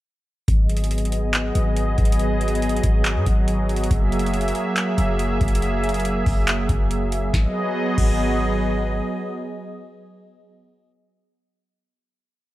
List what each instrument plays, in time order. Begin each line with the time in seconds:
0.48 808-style bass G#1, analog synth pad F#3 B3 G#4 D#5, kick, closed hi-hat
0.69 closed hi-hat
0.77 closed hi-hat
0.84 closed hi-hat
0.91 closed hi-hat
0.98 closed hi-hat
1.05 closed hi-hat
1.12 closed hi-hat
1.34 clap, closed hi-hat
1.55 808-style bass G#1, closed hi-hat
1.77 closed hi-hat
1.98 808-style bass G#1, kick, closed hi-hat
2.05 closed hi-hat
2.12 closed hi-hat
2.19 closed hi-hat
2.41 closed hi-hat
2.48 closed hi-hat
2.55 closed hi-hat
2.62 closed hi-hat
2.69 closed hi-hat
2.76 closed hi-hat
2.83 808-style bass G#1, kick, closed hi-hat
3.05 clap, closed hi-hat
3.16 808-style bass G#2
3.26 808-style bass G#1, kick, closed hi-hat
3.48 closed hi-hat
3.69 closed hi-hat
3.76 closed hi-hat
3.84 closed hi-hat
3.91 808-style bass F#1, analog synth pad A#3 G#4 E5, kick, closed hi-hat
4.12 closed hi-hat
4.19 closed hi-hat
4.26 closed hi-hat
4.34 closed hi-hat
4.41 closed hi-hat
4.48 closed hi-hat
4.55 closed hi-hat
4.76 clap, closed hi-hat
4.98 808-style bass F#1, closed hi-hat
5.19 closed hi-hat
5.41 808-style bass F#1, kick, closed hi-hat
5.48 closed hi-hat
5.55 closed hi-hat
5.62 closed hi-hat
5.84 closed hi-hat
5.89 closed hi-hat
5.94 closed hi-hat
6.00 closed hi-hat
6.05 closed hi-hat
6.26 808-style bass F#1, kick, open hi-hat
6.48 clap, closed hi-hat
6.69 808-style bass F#1, kick, closed hi-hat
6.91 closed hi-hat
7.12 closed hi-hat
7.33 808-style bass G#1, analog synth pad F#3 B3 G#4 D#5, kick, snare
7.98 808-style bass G#1, kick, crash